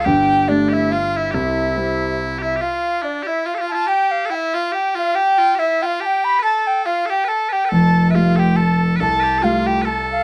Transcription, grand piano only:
X:1
M:3/4
L:1/8
Q:"Swing" 1/4=141
K:Flyd
V:1 name="Grand piano" clef=bass
[G,,,G,,]2 [G,A,D]2 z2 | [C,,C,]2 [G,CE]2 z2 | z6 | z6 |
z6 | z6 | [F,,,F,,]2 [G,A,F]2 z2 | C,,2 [G,A,F]2 z2 |]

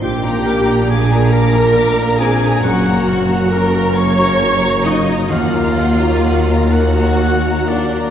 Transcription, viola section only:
X:1
M:6/8
L:1/8
Q:3/8=45
K:Eb
V:1 name="Viola section"
G2 A B2 A | _G2 B _d2 E | F3 _G2 D |]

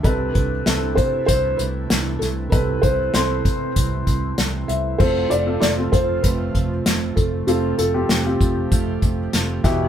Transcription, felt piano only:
X:1
M:4/4
L:1/8
Q:1/4=97
K:Flyd
V:1 name="Felt piano"
A B2 c c B2 A | B c3 z3 e | c d d c B3 A | G A6 e |]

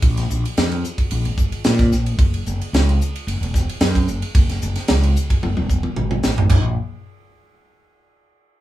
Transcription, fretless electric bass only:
X:1
M:4/4
L:1/16
Q:"Swing 16ths" 1/4=111
K:Gblyd
V:1 name="Fretless electric bass" clef=bass
B,,,2 B,,, z F,,2 z2 B,,, A,,,2 z B,,2 B,,,2 | G,,,2 G,,, z D,,2 z2 G,,, _F,,,2 z G,,2 G,,, z | G,,,2 G,,, z D,,2 z2 G,,, _F,,,2 z A,,,2 =A,,,2 | B,,,2 z12 z2 |]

